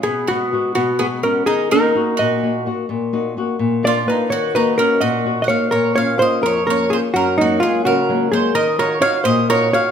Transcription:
<<
  \new Staff \with { instrumentName = "Hollow-body jazz guitar" } { \time 6/8 \key ees \minor \tempo 4. = 85 aes'8 ges'4 ges'8 aes'8 bes'8 | aes'8 bes'4 ees''4~ ees''32 r16. | r2 d''8 ces''8 | des''8 ces''8 bes'8 ees''8.~ ees''32 ees''32 des''8 |
\key bes \minor bes'8 des''8 c''8 bes'8 bes'8 aes'8 | ges'8 ees'8 f'8 ges'4 aes'8 | bes'8 bes'8 des''8 c''8 bes'8 des''8 | }
  \new Staff \with { instrumentName = "Mandolin" } { \time 6/8 \key ees \minor ces'8 ces'4 ces'8 ces'8 des'8 | ees'8 ees'4 ges'4~ ges'32 r16. | r2 f'8 ees'8 | ges'8 ees'8 des'8 ges'8.~ ges'32 ges''32 f''8 |
\key bes \minor des''8 f''8 ees''8 des''8 des''8 c''8 | bes'8 ges'8 aes'8 bes'4 c''8 | ees''8 des''8 f''8 ees''8 des''8 f''8 | }
  \new Staff \with { instrumentName = "Nylon-string guitar" } { \time 6/8 \key ees \minor ces8 <aes ces' ges'>8 <aes ces' ges'>8 ces8 <aes ces' ges'>8 <aes ces' ges'>8 | ees8 <bes ees' ges'>8 <bes ees' ges'>8 bes,8 <bes ees' ges'>8 <bes ees' ges'>8 | bes,8 <bes ees' ges'>8 <bes ees' ges'>8 bes,8 <bes d' f'>8 <bes d' f'>8 | ees8 <bes ees' ges'>8 <ees' ges'>8 bes,8 <bes ees' ges'>8 <bes ees' ges'>8 |
\key bes \minor bes,8 <bes des' f'>8 <bes des' f'>8 f,8 <bes des' f'>8 <bes des' f'>8 | ges,8 <ges aes bes>8 <ges aes bes>8 des8 <ges aes bes>8 <ges aes bes>8 | ees8 <ees' f' ges'>8 <ees' f' ges'>8 bes,8 <ees' f' ges'>8 <ees' f' ges'>8 | }
>>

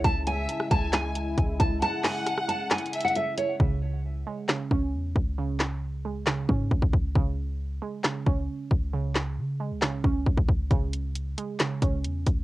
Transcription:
<<
  \new Staff \with { instrumentName = "Nylon-string guitar" } { \time 4/4 \key cis \minor \tempo 4 = 135 a''8 gis''4 a''8 gis''4. a''8 | a''8 gis''4 a''8 gis''8. fis''16 e''8 cis''8 | r1 | r1 |
r1 | r1 | r1 | }
  \new Staff \with { instrumentName = "Violin section" } { \time 4/4 \key cis \minor r8 e''4 gis''4. r4 | fis''2~ fis''8 e''8 r4 | r1 | r1 |
r1 | r1 | r1 | }
  \new Staff \with { instrumentName = "Analog synth pad" } { \clef bass \time 4/4 \key cis \minor <cis gis e'>1~ | <cis gis e'>1 | r1 | r1 |
r1 | r1 | r1 | }
  \new Staff \with { instrumentName = "Synth pluck" } { \clef bass \time 4/4 \key cis \minor r1 | r1 | cis4. gis8 cis8 cis'4. | cis4. gis8 cis8 cis'4. |
cis4. gis8 cis8 cis'4. | cis4. gis8 cis8 cis'4. | cis4. gis8 cis8 cis'4. | }
  \new Staff \with { instrumentName = "808-style bass" } { \clef bass \time 4/4 \key cis \minor cis,4 r8 cis,4. cis,8 cis,8 | r1 | cis,4. r4 cis,8 e,8 cis,8~ | cis,2~ cis,8 gis,8 cis,16 cis,16 cis,8 |
cis,4. r4 cis,8 r8 cis,8~ | cis,4 cis8. cis,8. cis,8 cis,16 cis,16 cis,8 | cis,4. r4 cis,8 e,8 cis,8 | }
  \new DrumStaff \with { instrumentName = "Drums" } \drummode { \time 4/4 <hh bd>8 hh8 hh16 ss16 <hh bd>8 <hc hh sn>8 hh8 <hh bd>8 <hh bd>8 | hh8 <hc hho sn>8 <hh ss>16 ss16 hh8 \tuplet 3/2 { <hc hh sn>16 hh16 hh16 hh16 hh16 hh16 } hh8 hh8 | bd4 r4 <hc sn>8 bd8 r8 bd8 | r8 <hc sn>8 r4 <hc sn>8 bd8 bd16 bd16 bd8 |
bd4 r4 <hc sn>8 bd8 r8 bd8 | r8 <hc sn>8 r4 <hc sn>8 bd8 bd16 bd16 bd8 | <hh bd>8 hh8 hh8 hh8 <hc hh sn>8 <hh bd>8 hh8 <hh bd>8 | }
>>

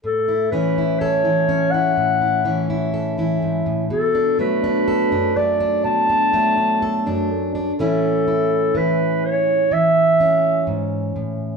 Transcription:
<<
  \new Staff \with { instrumentName = "Clarinet" } { \time 4/4 \key a \major \tempo 4 = 62 a'8 b'8 cis''8. fis''4 r4 r16 | a'8 b'4 d''8 a''4. r8 | a'4 b'8 cis''8 e''4 r4 | }
  \new Staff \with { instrumentName = "Steel-string acoustic guitar" } { \time 4/4 \key a \major << { r16 e'16 cis'16 e'16 a'16 e'16 cis'16 e'8 e'16 cis'16 e'16 a'16 e'8. | r16 d'16 a16 d'16 a'16 d'16 a16 d'8 d'16 a16 d'16 a'16 d'8 d'16 | <e cis' e'>8 e'2 cis'4. | } \\ { a,8 e8. e8. a,8 e8. e16 gis,16 a,16 | b,8 fis8. fis,8. b,8 fis8. fis,8. | a,4 e4 e4 gis,8 a,8 | } >> }
>>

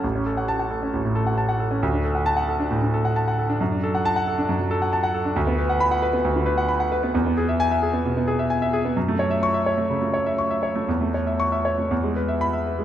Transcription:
\new Staff \with { instrumentName = "Grand piano" } { \time 4/4 \key d \lydian \tempo 4 = 133 << { r4 a''8 r2 r8 | r4 a''8 r2 r8 | r4 a''8 r2 r8 | \key e \mixolydian r4 b''8 r2 r8 |
r4 gis''8 r2 r8 | r4 cis'''8 r2 r8 | r4 cis'''8 r4. b''8 r8 | } \\ { a,,16 cis'16 a'16 fis''8 fis''16 a'16 cis'16 a,,16 a,16 a'16 fis''16 a''16 fis''16 a'16 cis'16 | d,16 d'16 a'16 fis''8 fis''16 a'16 d'16 a,16 d'16 a'16 fis''16 a''16 fis''16 a'16 d'16 | fis,16 d'16 a'16 fis''8 fis''16 a'16 d'16 fis,16 fis16 a'16 fis''16 a''16 fis''16 a'16 d'16 | d,16 b16 b'16 fis''8 fis''16 b'16 b16 d,16 d16 b'16 fis''16 b''16 fis''16 b'16 b16 |
e,16 b16 gis'16 e''8 e''16 gis'16 b16 b,16 b16 gis'16 e''16 gis''16 e''16 gis'16 b16 | fis,16 a16 cis''16 e''8 e''16 cis''16 a16 cis16 a16 cis''16 e''16 cis'''16 e''16 cis''16 a16 | e,16 a16 cis''16 e''8 e''16 cis''16 a16 e,16 gis16 b'16 e''8 e''16 b'16 gis16 | } >> }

